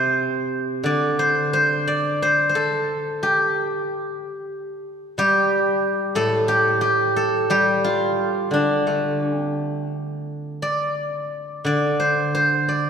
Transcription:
Already playing: C3 C5
0.83 D3 D5
1.19 C5
1.53 C5
1.88 D5
2.22 C5
2.49 C5
2.55 A4
3.23 G4
5.18 G3 G4
6.15 A2 A4
6.48 G4
6.81 G4
7.16 A4
7.50 G3 G4
7.84 F4
8.51 D3 D4
8.87 A3
9.24 C#4
9.40 C4
10.62 D5
11.65 D3 D5
12.00 C5
12.35 C5
12.69 D5

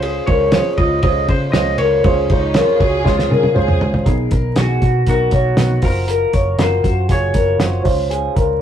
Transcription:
Already playing: C#2 C#4 F4 G#4 C5
0.02 G#4, ride
0.27 C#2 C#4 F4 G#4 A#4 C5 C#5, kick, ride
0.52 C#4 F4 G#4 C5, snare, ride
0.78 C#2 F4 D#5, kick, ride
1.03 C#2 C#4 F4 G#4 C5 D#5, kick, ride
1.28 C#3 C5, kick, ride
1.52 C#2 C#4 F4 G#4 C5 D#5, snare, ride
1.78 C#2 A#4 C#5, ride
2.04 C#2 C#4 F4 G#4 C5, kick, ride
2.30 C#2 C#4 D#4 F4 G#4 C5, kick, ride
2.54 C#4 F4 G#4 A#4 C#5, snare, ride
2.79 C#2 F#4 G#4, kick, ride
3.04 C#2 C#4 F4 G#4 C#5, kick, snare
3.19 snare
3.30 C#3 G#4 A#4, high tom
3.43 high tom
3.54 C#2 C#4 F4 G#4 C5, mid tom
3.68 mid tom
3.81 C#2, floor tom
3.94 floor tom
4.05 B1 B3 D#4 G#4 A#4, kick, closed hi-hat
4.31 B1 A#4, kick, closed hi-hat
4.56 B1 B3 D#4 F#4 G#4, snare, closed hi-hat
4.82 B2 F#4, kick, closed hi-hat
5.06 B1 B3 D#4 F#4 A#4, kick, closed hi-hat
5.31 B1 C#5, kick, closed hi-hat
5.57 B1 B3 D#4 A#4, snare, closed hi-hat
5.82 F#1 F4 F#4 A#4 C5, kick, open hi-hat
6.08 A#4, closed hi-hat
6.33 F#1 C#5, kick, closed hi-hat
6.58 F#1 F4 F#4 A#4 C5, snare, closed hi-hat
6.84 F#2 F#4, kick, closed hi-hat
7.08 F#1 F4 F#4 G#4 A#4 C#5, kick, closed hi-hat
7.34 F#1 A#4, kick, closed hi-hat
7.59 F#1 F4 F#4 A#4 C5, snare, closed hi-hat
7.83 C#2 C#4 F4 C5, kick, open hi-hat
8.10 G#4, closed hi-hat
8.36 C#2 A#4, kick, closed hi-hat

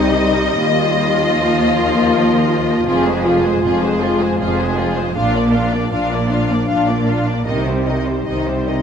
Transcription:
Already playing: C2 C3 G3 D#4 D#5
0.60 D#2 A#3 F4
1.35 F3
2.87 F1 F2 F3 G#3 F4 G#4
3.06 G#3 G#4 C5
3.25 F3 F4 G#4
3.44 G#3 G#4 C5
3.63 F1 F2 F3 F4 G#4
3.82 G#3 G#4 C5
4.00 F3 F4 G#4
4.19 G#3 G#4 C5
4.39 F1 F2 F3 F4 G#4
4.58 G#3 G#4 C5
4.77 F3 F4 G#4
4.96 G#3 G#4 C5
5.15 A#1 A#2 F3 D4 F4 F5
5.34 A#3 D4 D5
5.53 D4 F4 F5
5.72 A#3 D4 D5
5.92 A#1 A#2 D4 F4 F5
6.12 A#3 D4 D5
6.31 D4 F4 F5
6.50 A#3 D4 D5
6.68 A#1 A#2 D4 F4 F5
6.88 A#3 D4 D5
7.07 D4 F4 F5
7.27 A#3 D4 D5
7.46 C2 C3 D#3 G3 D#4 D#5
7.66 G3 C4 C5
7.86 D#3 D#4 D#5
8.06 G3 C4 C5
8.26 C2 C3 D#3 D#4 D#5
8.47 G3 C4 C5
8.67 D#3 D#4 D#5

